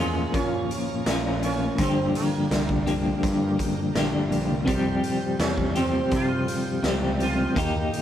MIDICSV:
0, 0, Header, 1, 6, 480
1, 0, Start_track
1, 0, Tempo, 722022
1, 1188, Time_signature, 4, 2, 24, 8
1, 5331, End_track
2, 0, Start_track
2, 0, Title_t, "Tonewheel organ"
2, 0, Program_c, 0, 16
2, 0, Note_on_c, 0, 65, 53
2, 0, Note_on_c, 0, 70, 53
2, 0, Note_on_c, 0, 73, 52
2, 0, Note_on_c, 0, 77, 61
2, 1168, Note_off_c, 0, 73, 0
2, 1168, Note_off_c, 0, 77, 0
2, 1169, Note_off_c, 0, 65, 0
2, 1188, Note_on_c, 0, 74, 48
2, 1190, Note_on_c, 0, 77, 58
2, 1193, Note_on_c, 0, 67, 58
2, 3081, Note_off_c, 0, 70, 0
2, 3088, Note_off_c, 0, 74, 0
2, 3127, Note_on_c, 0, 72, 52
2, 3127, Note_on_c, 0, 79, 58
2, 5000, Note_off_c, 0, 77, 0
2, 5002, Note_off_c, 0, 67, 0
2, 5017, Note_off_c, 0, 72, 0
2, 5024, Note_on_c, 0, 67, 58
2, 5026, Note_on_c, 0, 75, 53
2, 5028, Note_on_c, 0, 70, 49
2, 5331, Note_off_c, 0, 67, 0
2, 5331, Note_off_c, 0, 70, 0
2, 5331, Note_off_c, 0, 75, 0
2, 5331, Note_off_c, 0, 79, 0
2, 5331, End_track
3, 0, Start_track
3, 0, Title_t, "Sitar"
3, 0, Program_c, 1, 104
3, 0, Note_on_c, 1, 56, 81
3, 228, Note_off_c, 1, 56, 0
3, 230, Note_on_c, 1, 61, 93
3, 923, Note_off_c, 1, 61, 0
3, 957, Note_on_c, 1, 61, 92
3, 1197, Note_off_c, 1, 61, 0
3, 1200, Note_on_c, 1, 60, 83
3, 1433, Note_off_c, 1, 60, 0
3, 1436, Note_on_c, 1, 58, 81
3, 2365, Note_off_c, 1, 58, 0
3, 3585, Note_on_c, 1, 61, 79
3, 3832, Note_off_c, 1, 61, 0
3, 3835, Note_on_c, 1, 60, 82
3, 4078, Note_off_c, 1, 60, 0
3, 4093, Note_on_c, 1, 65, 86
3, 4793, Note_off_c, 1, 65, 0
3, 4801, Note_on_c, 1, 65, 72
3, 5017, Note_off_c, 1, 65, 0
3, 5331, End_track
4, 0, Start_track
4, 0, Title_t, "Clean electric guitar"
4, 0, Program_c, 2, 27
4, 0, Note_on_c, 2, 58, 62
4, 0, Note_on_c, 2, 61, 66
4, 0, Note_on_c, 2, 65, 72
4, 2, Note_on_c, 2, 53, 65
4, 9, Note_on_c, 2, 46, 59
4, 692, Note_off_c, 2, 46, 0
4, 696, Note_off_c, 2, 61, 0
4, 698, Note_off_c, 2, 58, 0
4, 700, Note_on_c, 2, 46, 69
4, 704, Note_off_c, 2, 53, 0
4, 706, Note_on_c, 2, 53, 79
4, 719, Note_on_c, 2, 58, 70
4, 721, Note_on_c, 2, 61, 76
4, 722, Note_off_c, 2, 65, 0
4, 725, Note_on_c, 2, 65, 83
4, 1170, Note_off_c, 2, 46, 0
4, 1179, Note_off_c, 2, 58, 0
4, 1180, Note_off_c, 2, 61, 0
4, 1189, Note_on_c, 2, 43, 85
4, 1196, Note_on_c, 2, 50, 77
4, 1202, Note_off_c, 2, 53, 0
4, 1205, Note_on_c, 2, 53, 85
4, 1209, Note_off_c, 2, 65, 0
4, 1209, Note_on_c, 2, 58, 87
4, 1210, Note_on_c, 2, 62, 88
4, 1219, Note_on_c, 2, 67, 93
4, 1894, Note_off_c, 2, 43, 0
4, 1898, Note_off_c, 2, 50, 0
4, 1898, Note_off_c, 2, 62, 0
4, 1900, Note_off_c, 2, 67, 0
4, 1903, Note_on_c, 2, 67, 69
4, 1904, Note_off_c, 2, 58, 0
4, 1906, Note_on_c, 2, 62, 69
4, 1911, Note_on_c, 2, 58, 67
4, 1915, Note_off_c, 2, 53, 0
4, 1918, Note_on_c, 2, 53, 66
4, 1921, Note_on_c, 2, 50, 55
4, 1928, Note_on_c, 2, 43, 59
4, 2611, Note_off_c, 2, 43, 0
4, 2613, Note_off_c, 2, 62, 0
4, 2615, Note_off_c, 2, 58, 0
4, 2618, Note_off_c, 2, 53, 0
4, 2619, Note_on_c, 2, 43, 69
4, 2620, Note_off_c, 2, 50, 0
4, 2629, Note_on_c, 2, 50, 72
4, 2632, Note_on_c, 2, 53, 68
4, 2635, Note_on_c, 2, 58, 74
4, 2641, Note_off_c, 2, 67, 0
4, 2642, Note_on_c, 2, 62, 75
4, 2644, Note_on_c, 2, 67, 81
4, 3089, Note_off_c, 2, 43, 0
4, 3089, Note_off_c, 2, 50, 0
4, 3090, Note_off_c, 2, 53, 0
4, 3092, Note_on_c, 2, 48, 77
4, 3097, Note_off_c, 2, 58, 0
4, 3098, Note_on_c, 2, 53, 82
4, 3100, Note_off_c, 2, 62, 0
4, 3103, Note_on_c, 2, 55, 87
4, 3108, Note_on_c, 2, 60, 85
4, 3114, Note_off_c, 2, 67, 0
4, 3117, Note_on_c, 2, 67, 82
4, 3805, Note_off_c, 2, 48, 0
4, 3808, Note_off_c, 2, 53, 0
4, 3813, Note_off_c, 2, 60, 0
4, 3822, Note_off_c, 2, 67, 0
4, 3824, Note_on_c, 2, 67, 73
4, 3833, Note_off_c, 2, 55, 0
4, 3833, Note_on_c, 2, 60, 69
4, 3835, Note_on_c, 2, 55, 60
4, 3840, Note_on_c, 2, 53, 60
4, 3848, Note_on_c, 2, 48, 66
4, 4530, Note_off_c, 2, 48, 0
4, 4531, Note_off_c, 2, 67, 0
4, 4535, Note_off_c, 2, 60, 0
4, 4536, Note_off_c, 2, 55, 0
4, 4538, Note_off_c, 2, 53, 0
4, 4538, Note_on_c, 2, 48, 74
4, 4547, Note_on_c, 2, 53, 84
4, 4552, Note_on_c, 2, 55, 79
4, 4560, Note_on_c, 2, 60, 83
4, 4565, Note_on_c, 2, 67, 79
4, 5007, Note_off_c, 2, 48, 0
4, 5012, Note_off_c, 2, 53, 0
4, 5014, Note_off_c, 2, 55, 0
4, 5018, Note_off_c, 2, 60, 0
4, 5018, Note_on_c, 2, 51, 82
4, 5021, Note_off_c, 2, 67, 0
4, 5026, Note_on_c, 2, 58, 89
4, 5033, Note_on_c, 2, 63, 85
4, 5040, Note_on_c, 2, 67, 95
4, 5331, Note_off_c, 2, 51, 0
4, 5331, Note_off_c, 2, 58, 0
4, 5331, Note_off_c, 2, 63, 0
4, 5331, Note_off_c, 2, 67, 0
4, 5331, End_track
5, 0, Start_track
5, 0, Title_t, "Picked electric bass"
5, 0, Program_c, 3, 34
5, 0, Note_on_c, 3, 40, 83
5, 155, Note_off_c, 3, 40, 0
5, 225, Note_on_c, 3, 46, 83
5, 431, Note_off_c, 3, 46, 0
5, 708, Note_on_c, 3, 34, 83
5, 1117, Note_off_c, 3, 34, 0
5, 1187, Note_on_c, 3, 31, 85
5, 1392, Note_off_c, 3, 31, 0
5, 1668, Note_on_c, 3, 36, 85
5, 2077, Note_off_c, 3, 36, 0
5, 2150, Note_on_c, 3, 43, 87
5, 2353, Note_off_c, 3, 43, 0
5, 2628, Note_on_c, 3, 34, 78
5, 2730, Note_off_c, 3, 34, 0
5, 2747, Note_on_c, 3, 31, 68
5, 2855, Note_off_c, 3, 31, 0
5, 2859, Note_on_c, 3, 34, 76
5, 2971, Note_off_c, 3, 34, 0
5, 2985, Note_on_c, 3, 36, 73
5, 3094, Note_off_c, 3, 36, 0
5, 3111, Note_on_c, 3, 36, 85
5, 3314, Note_off_c, 3, 36, 0
5, 3582, Note_on_c, 3, 40, 80
5, 3993, Note_off_c, 3, 40, 0
5, 4068, Note_on_c, 3, 48, 84
5, 4272, Note_off_c, 3, 48, 0
5, 4544, Note_on_c, 3, 37, 86
5, 4953, Note_off_c, 3, 37, 0
5, 5026, Note_on_c, 3, 39, 83
5, 5230, Note_off_c, 3, 39, 0
5, 5331, End_track
6, 0, Start_track
6, 0, Title_t, "Drums"
6, 226, Note_on_c, 9, 36, 102
6, 227, Note_on_c, 9, 42, 70
6, 293, Note_off_c, 9, 36, 0
6, 293, Note_off_c, 9, 42, 0
6, 471, Note_on_c, 9, 42, 57
6, 537, Note_off_c, 9, 42, 0
6, 707, Note_on_c, 9, 42, 74
6, 708, Note_on_c, 9, 38, 103
6, 773, Note_off_c, 9, 42, 0
6, 774, Note_off_c, 9, 38, 0
6, 949, Note_on_c, 9, 42, 55
6, 1015, Note_off_c, 9, 42, 0
6, 1186, Note_on_c, 9, 42, 77
6, 1187, Note_on_c, 9, 36, 101
6, 1252, Note_off_c, 9, 42, 0
6, 1253, Note_off_c, 9, 36, 0
6, 1431, Note_on_c, 9, 42, 58
6, 1498, Note_off_c, 9, 42, 0
6, 1670, Note_on_c, 9, 42, 73
6, 1671, Note_on_c, 9, 38, 91
6, 1737, Note_off_c, 9, 38, 0
6, 1737, Note_off_c, 9, 42, 0
6, 1788, Note_on_c, 9, 36, 82
6, 1855, Note_off_c, 9, 36, 0
6, 1909, Note_on_c, 9, 42, 58
6, 1976, Note_off_c, 9, 42, 0
6, 2149, Note_on_c, 9, 36, 97
6, 2153, Note_on_c, 9, 42, 80
6, 2215, Note_off_c, 9, 36, 0
6, 2219, Note_off_c, 9, 42, 0
6, 2389, Note_on_c, 9, 36, 72
6, 2392, Note_on_c, 9, 42, 63
6, 2455, Note_off_c, 9, 36, 0
6, 2458, Note_off_c, 9, 42, 0
6, 2629, Note_on_c, 9, 42, 71
6, 2630, Note_on_c, 9, 38, 98
6, 2695, Note_off_c, 9, 42, 0
6, 2696, Note_off_c, 9, 38, 0
6, 2873, Note_on_c, 9, 42, 53
6, 2939, Note_off_c, 9, 42, 0
6, 3109, Note_on_c, 9, 36, 97
6, 3110, Note_on_c, 9, 42, 72
6, 3175, Note_off_c, 9, 36, 0
6, 3176, Note_off_c, 9, 42, 0
6, 3348, Note_on_c, 9, 42, 51
6, 3415, Note_off_c, 9, 42, 0
6, 3587, Note_on_c, 9, 42, 68
6, 3588, Note_on_c, 9, 38, 97
6, 3654, Note_off_c, 9, 38, 0
6, 3654, Note_off_c, 9, 42, 0
6, 3706, Note_on_c, 9, 36, 78
6, 3773, Note_off_c, 9, 36, 0
6, 3826, Note_on_c, 9, 42, 53
6, 3892, Note_off_c, 9, 42, 0
6, 4065, Note_on_c, 9, 42, 70
6, 4066, Note_on_c, 9, 36, 99
6, 4131, Note_off_c, 9, 42, 0
6, 4133, Note_off_c, 9, 36, 0
6, 4309, Note_on_c, 9, 42, 59
6, 4375, Note_off_c, 9, 42, 0
6, 4546, Note_on_c, 9, 42, 73
6, 4547, Note_on_c, 9, 38, 96
6, 4613, Note_off_c, 9, 38, 0
6, 4613, Note_off_c, 9, 42, 0
6, 4788, Note_on_c, 9, 42, 50
6, 4855, Note_off_c, 9, 42, 0
6, 5028, Note_on_c, 9, 36, 95
6, 5029, Note_on_c, 9, 42, 75
6, 5094, Note_off_c, 9, 36, 0
6, 5096, Note_off_c, 9, 42, 0
6, 5276, Note_on_c, 9, 42, 53
6, 5331, Note_off_c, 9, 42, 0
6, 5331, End_track
0, 0, End_of_file